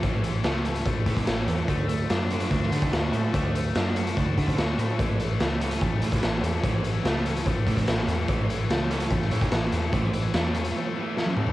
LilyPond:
<<
  \new Staff \with { instrumentName = "Distorted electric guitar" } { \time 4/4 \key a \mixolydian \tempo 4 = 146 <e a cis'>8 e8 a8 cis'8 a8 e8 cis'8 e8 | a8 a8 d'8 fis'8 d'8 a8 fis'8 a8 | a8 a8 d'8 fis'8 d'8 a8 fis'8 a8 | e8 e8 a8 cis'8 a8 e8 cis'8 e8 |
e8 e8 a8 cis'8 a8 e8 cis'8 e8 | e8 e8 a8 cis'8 a8 e8 cis'8 e8 | e8 e8 a8 cis'8 a8 e8 cis'8 e8 | }
  \new Staff \with { instrumentName = "Overdriven electric guitar" } { \clef bass \time 4/4 \key a \mixolydian <a, e a>8 <a, e>8 <a, e a>8 <a, e>8 <a, e>8 <a, e a>8 <a, e>8 <a, e>8 | <d a d'>8 <d a>8 <d a>8 <d a d'>8 <d a>8 <d a d'>8 <d a>8 <d a>8 | <d a d'>8 <d a>8 <d a d'>8 <d a>8 <d a>8 <d a d'>8 <d a>8 <d a>8 | <a, e a>8 <a, e>8 <a, e>8 <a, e a>8 <a, e>8 <a, e a>8 <a, e>8 <a, e>8 |
<a, e a>8 <a, e>8 <a, e a>8 <a, e>8 <a, e>8 <a, e a>8 <a, e>8 <a, e>8 | <a, e a>8 <a, e>8 <a, e>8 <a, e a>8 <a, e>8 <a, e a>8 <a, e>8 <a, e>8 | <a, e a>8 <a, e>8 <a, e a>8 <a, e>8 <a, e>8 <a, e a>8 <a, e>8 <a, e>8 | }
  \new Staff \with { instrumentName = "Picked electric bass" } { \clef bass \time 4/4 \key a \mixolydian a,,4 cis,4 a,,8 a,8 a,,8 e,8 | d,4 fis,4 d,8 d8 d,8 a,8 | d,4 fis,4 d,8 d8 d,8 a,8 | a,,4 cis,4 a,,8 a,8 a,,8 e,8 |
a,,4 cis,4 a,,8 a,8 a,,8 e,8 | a,,4 cis,4 a,,8 a,8 a,,8 e,8 | a,,4 e,4 r2 | }
  \new DrumStaff \with { instrumentName = "Drums" } \drummode { \time 4/4 <hh bd>8 hh8 <hh sn>8 hh16 hh16 <hh bd>8 <hh bd>16 <hh bd>16 <hh sn>8 hh8 | <hh bd>8 hh8 <hh sn>8 hh16 hh16 <hh bd>16 sn16 hh16 <hh bd>16 <hh sn>8 hh8 | <hh bd>8 hh8 <hh sn>8 hh16 hh16 <hh bd>8 <hh bd>16 <hh bd>16 <hh sn>8 hh8 | <hh bd>8 hh8 <hh sn>8 hh16 hh16 <hh bd>8 hh16 <hh bd>16 <hh sn>8 hh8 |
<hh bd>8 hh8 <hh sn>8 hh16 hh16 <hh bd>8 <hh bd>16 <hh bd>16 <hh sn>8 hh8 | <hh bd>8 hh8 <hh sn>8 hh16 hh16 <hh bd>16 sn16 hh16 <hh bd>16 <hh sn>8 hh8 | <hh bd>8 hh8 <hh sn>8 hh16 hh16 r4 sn16 tommh16 toml16 tomfh16 | }
>>